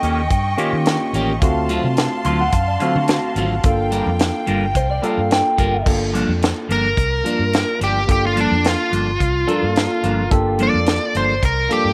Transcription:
Already playing: tine electric piano A#3 C#4 F4 A4, string section D#5 G5 C#6, clean electric guitar G5
0.02 fingered electric bass D#2, clean electric guitar D#3 A#3 C#4 G4, closed hi-hat
0.30 fingered electric bass G2, kick, closed hi-hat
0.57 clean electric guitar D#3 A#3 C#4 G4, tine electric piano A#3 C#4 F4 G4, closed hi-hat
0.73 fingered electric bass D#3
0.86 snare, closed hi-hat
1.13 fingered electric bass A1, clean electric guitar D#3 A#3 C#4 G4, closed hi-hat
1.42 fingered electric bass D2, tine electric piano A3 C4 F4 F#4, string section F5 A5 C6, kick, closed hi-hat
1.69 clean electric guitar D3 F#3 C4 F4, closed hi-hat
1.84 fingered electric bass C3
1.97 snare, closed hi-hat
2.24 fingered electric bass D2, clean electric guitar D3 F#3 C4 F4 C6, closed hi-hat
2.40 clean electric guitar F#5
2.52 fingered electric bass F#2, clean electric guitar F5, kick, closed hi-hat
2.68 clean electric guitar D5
2.80 clean electric guitar D3 F#3 C4 F4 C5, tine electric piano A3 C4 F#4 F5, closed hi-hat
2.95 fingered electric bass D3, clean electric guitar F#4
3.08 clean electric guitar F#4, snare, closed hi-hat
3.36 fingered electric bass G#1, clean electric guitar D3 F#3 C4 F4, closed hi-hat
3.63 fingered electric bass G1, tine electric piano A#3 D4 F4 A4, string section G5, kick, closed hi-hat
3.91 clean electric guitar G3 D4 F4 A#4, closed hi-hat
4.06 fingered electric bass F2
4.19 snare, closed hi-hat
4.47 fingered electric bass G1, clean electric guitar G3 D4 F4 A#4, closed hi-hat
4.75 fingered electric bass C2, clean electric guitar C5, kick, closed hi-hat
4.91 clean electric guitar D5
5.02 clean electric guitar G3 D4 F4 A#4 F5, tine electric piano A#3 D4 F4 A4, closed hi-hat
5.18 fingered electric bass G2
5.31 clean electric guitar G5, snare, closed hi-hat
5.57 fingered electric bass G1, clean electric guitar G3 D4 F4 A#4, kick, closed hi-hat
5.85 fingered electric bass G1, tine electric piano A#3 D4 F4 A4, kick, crash
6.13 clean electric guitar G2 F3 A#3 D4, closed hi-hat
6.28 fingered electric bass F2
6.42 snare, closed hi-hat
6.68 fingered electric bass G1, clean electric guitar G2 F3 A#3 D4, lead electric guitar A#4, closed hi-hat
6.97 fingered electric bass C2, kick, closed hi-hat
7.24 clean electric guitar G2 F3 A#3 D4, tine electric piano A#3 D4 F4 A#4, closed hi-hat
7.39 fingered electric bass G2
7.53 snare, closed hi-hat
7.79 fingered electric bass G1, clean electric guitar G2 F3 A#3 D4, closed hi-hat
7.84 lead electric guitar G4
8.07 fingered electric bass G1, tine electric piano A#3 D4 F4 A4, kick, closed hi-hat
8.12 lead electric guitar G4
8.26 lead electric guitar F4
8.35 clean electric guitar G2 F3 A#3 D4, closed hi-hat
8.40 lead electric guitar D4
8.51 fingered electric bass F2
8.64 lead electric guitar F4, snare, closed hi-hat
8.91 fingered electric bass G1, clean electric guitar G2 F3 A#3 D4, closed hi-hat
9.20 fingered electric bass C2, kick, closed hi-hat
9.46 clean electric guitar G2 F3 A#3 D4, tine electric piano A#3 D4 F4 A4, closed hi-hat
9.51 clean electric guitar A#4
9.63 fingered electric bass G2, clean electric guitar F4
9.76 clean electric guitar A#4, snare, closed hi-hat
9.92 clean electric guitar F4
10.03 fingered electric bass G1, clean electric guitar G2 F3 A#3 D4 A#4, closed hi-hat
10.30 fingered electric bass G1, tine electric piano A#3 D4 F4 A4, clean electric guitar G4, kick, closed hi-hat
10.59 clean electric guitar G2 F3 A#3 D4, closed hi-hat
10.63 lead electric guitar D5
10.74 fingered electric bass F2
10.86 snare, closed hi-hat
11.14 fingered electric bass G1, clean electric guitar G2 F3 A#3 D4, lead electric guitar C5, closed hi-hat
11.43 fingered electric bass C2, lead electric guitar A#4, kick, closed hi-hat
11.69 clean electric guitar G2 F3 A#3 D4, tine electric piano A#3 D4 F4 A4, lead electric guitar G4, closed hi-hat
11.85 fingered electric bass G2

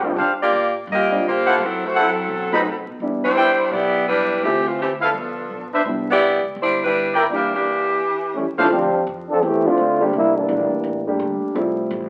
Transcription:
Already playing: trumpet section D4 G#4 C5 G5
0.03 upright bass C2, grand piano G3 C4 D4 F4
0.16 upright bass D#2, trumpet section D4 G4 C5 F5
0.42 saxophone section A#3 F4 G4 D5
0.51 upright bass A#2
0.87 upright bass G2
0.92 saxophone section A#3 F4 G4 D#5
1.11 grand piano G3 C4 D4 F4
1.22 upright bass C#3
1.28 saxophone section A#3 F4 G4 C5
1.46 trumpet section E4 A4 C5 F#5
1.58 upright bass F#2
1.63 saxophone section F#3 C4 E4 A4
1.85 saxophone section A3 E4 F#4 C5
1.94 trumpet section E4 A4 C5 F#5
2.00 saxophone section F#3 C4 E4 A4
2.28 upright bass B1
2.52 grand piano F#3 A3 C4 D#4, trumpet section D#4 B4 C5 B5
2.86 upright bass B2
3.00 upright bass E2, grand piano G3 B3 D4 E4
3.24 saxophone section G3 D4 E4 C5
3.36 trumpet section E4 B4 D5 G5
3.59 muted upright bass stroke
3.71 upright bass B1, saxophone section B3 E4 G4 D5
4.07 saxophone section G3 D4 E4 B4
4.43 upright bass D2, saxophone section E3 A3 C4 G4, grand piano F3 A3 C4 E4
4.68 saxophone section E3 A3 C4 F4
4.81 saxophone section E3 A3 C4 G4
5.00 trumpet section E4 A4 B4 F5
5.05 saxophone section F3 B3 D4 A4
5.14 upright bass G1
5.50 upright bass B1
5.72 trumpet section D4 B4 C5 E5
5.85 upright bass C2, grand piano G3 B3 D4 E4
6.11 saxophone section B3 E4 G4 D5
6.43 upright bass C#2
6.56 upright bass G1
6.61 saxophone section G3 D4 E4 C5
6.84 saxophone section G3 D4 E4 B4
7.14 trumpet section E4 A#4 D5 G5
7.30 saxophone section E3 A#3 G4, grand piano G3 A#3 D4 E4
7.34 saxophone section D4
7.54 saxophone section E3 A#3 D4 G4
8.35 trombone section E3 G3 A3 C#4
8.57 grand piano D2 F3 A3 C4 F4, trombone section G3 A3 C#4 E4, trumpet section D4 A4 C5 F5
8.70 upright bass D2, trombone section F3 C4 D4 G4
8.93 muted upright bass stroke
9.07 upright bass F2
9.29 trombone section F3 C4 D4 A4
9.43 upright bass E2, trombone section E3 A3 C4 G4
9.65 grand piano F3 A3 C4 D4 E4, trombone section A3 C4 D4 F4
9.78 upright bass D2
10.00 grand piano G3 A3 A#3 D4 G4
10.13 upright bass C2, trombone section G3 A#3 D4 E4
10.37 trombone section E3 G3 A#3 D4
10.49 upright bass A#1, grand piano G3 A3 A#3 D4 E4
10.70 muted upright bass stroke
10.84 upright bass A1
11.07 grand piano G3 A3 A#3 D4 G4
11.20 upright bass G1
11.42 muted upright bass stroke
11.55 upright bass F1, grand piano F3 G3 A3 C4 E4
11.91 upright bass A1

